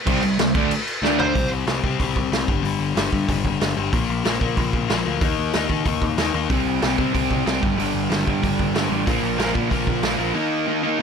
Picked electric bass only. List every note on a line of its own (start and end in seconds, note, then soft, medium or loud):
0.07 0.22 C2 loud
0.23 0.38 C2 medium
0.39 0.54 C2 medium
0.55 0.70 D2 medium
1.02 1.32 D2 medium
1.35 1.48 C2 medium
1.51 1.63 C2 medium
1.67 1.79 C2 medium
1.84 1.96 C3 medium
2.00 2.12 C2 medium
2.16 2.28 C2 medium
2.32 2.44 C2 medium
2.48 2.60 G1 medium
2.63 2.76 G1 loud
2.79 2.91 G1 medium
2.95 3.08 G1 medium
3.13 3.25 G2 medium
3.29 3.41 G1 medium
3.44 3.57 G1 medium
3.60 3.72 G1 medium
3.77 3.89 G1 medium
3.93 4.05 A#1 medium
4.09 4.21 A#1 medium
4.26 4.37 A#1 medium
4.41 4.53 A#2 medium
4.57 4.69 A#1 loud
4.73 4.85 A#1 medium
4.90 5.02 A#1 medium
5.07 5.18 D2 medium
5.21 5.33 D#2 medium
5.38 5.50 D#2 medium
5.55 5.66 D#2 medium
5.70 5.82 D#3 medium
5.86 5.98 D#2 medium
6.02 6.14 D#2 medium
6.17 6.30 D#2 medium
6.34 6.46 D#2 medium
6.50 6.62 C2 medium
6.66 6.78 C2 medium
6.83 6.95 C2 medium
6.99 7.11 C3 medium
7.15 7.27 C2 medium
7.31 7.43 C2 medium
7.47 7.59 C2 medium
7.63 7.75 G1 medium
7.78 7.90 G1 loud
7.95 8.07 G1 medium
8.10 8.23 G1 medium
8.28 8.39 G2 medium
8.43 8.55 G1 medium
8.59 8.71 G1 medium
8.75 8.87 G1 medium
8.91 9.03 A1 medium
9.07 9.20 A#1 medium
9.23 9.35 A#1 medium
9.38 9.51 A#1 medium
9.55 9.68 A#2 medium
9.71 9.84 A#1 loud
9.87 10.00 A#1 medium
10.02 10.15 A#1 medium
10.18 10.31 A#1 medium